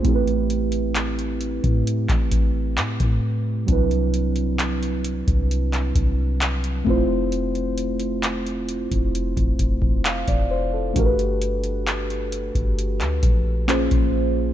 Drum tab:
HH |xxxxxxxxxxx-xx--|xxxxxxxxxxx-xx--|xxxxxxxxxxx-xx--|xxxxxxxxxxx-xx--|
CP |----x----x--x---|----x----x--x---|----x-------x---|----x----x--x---|
BD |o------o-oo--o--|o------o--o---o-|-------o-ooo-o--|o------o--o--o--|